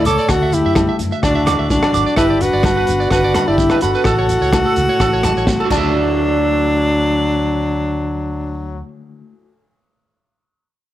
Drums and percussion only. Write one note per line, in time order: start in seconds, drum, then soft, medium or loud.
0.05 closed hi-hat medium
0.05 muted conga soft
0.05 shekere loud
0.18 shekere soft
0.29 kick medium
0.29 cross-stick medium
0.29 muted conga soft
0.29 low agogo medium
0.29 shekere medium
0.53 closed hi-hat soft
0.53 muted conga soft
0.53 shekere loud
0.75 kick medium
0.75 cross-stick medium
0.75 high conga loud
0.75 low conga medium
0.75 low agogo medium
0.75 shekere medium
0.99 closed hi-hat soft
0.99 shekere loud
1.12 shekere soft
1.23 kick medium
1.23 cross-stick medium
1.23 low agogo medium
1.23 shekere medium
1.47 cross-stick medium
1.47 closed hi-hat soft
1.47 high conga medium
1.47 low agogo medium
1.47 shekere loud
1.70 kick medium
1.70 high conga medium
1.70 shekere medium
1.83 cross-stick medium
1.83 low agogo medium
1.94 closed hi-hat soft
1.94 muted conga soft
1.94 shekere medium
2.07 shekere soft
2.16 kick medium
2.16 cross-stick medium
2.16 low agogo medium
2.16 shekere medium
2.40 closed hi-hat soft
2.40 muted conga soft
2.40 shekere medium
2.63 kick medium
2.63 cross-stick medium
2.63 high conga medium
2.63 low agogo medium
2.63 shekere medium
2.87 closed hi-hat soft
2.87 shekere medium
3.01 shekere soft
3.10 kick medium
3.10 cross-stick medium
3.10 low agogo medium
3.10 shekere medium
3.34 cross-stick medium
3.34 closed hi-hat soft
3.34 high conga medium
3.34 low agogo medium
3.34 shekere medium
3.58 kick medium
3.58 high conga medium
3.58 shekere medium
3.70 cross-stick medium
3.70 low agogo medium
3.81 closed hi-hat medium
3.81 muted conga soft
3.81 shekere medium
3.94 shekere soft
4.04 kick medium
4.04 cross-stick medium
4.04 muted conga soft
4.04 low agogo medium
4.04 shekere medium
4.29 closed hi-hat soft
4.29 muted conga soft
4.29 shekere medium
4.42 shekere soft
4.53 kick medium
4.53 cross-stick medium
4.53 high conga medium
4.53 low agogo medium
4.53 shekere medium
4.76 closed hi-hat medium
4.76 low conga medium
4.76 shekere medium
5.00 kick medium
5.00 cross-stick medium
5.00 muted conga soft
5.00 low agogo medium
5.00 shekere medium
5.23 cross-stick medium
5.23 closed hi-hat soft
5.23 high conga medium
5.23 low agogo medium
5.23 shekere loud
5.37 shekere soft
5.47 kick medium
5.47 snare soft
5.47 high conga medium
5.47 shekere medium
5.60 low agogo medium
5.70 kick medium
5.70 crash medium
5.70 muted conga medium
5.70 low agogo loud
5.70 shekere medium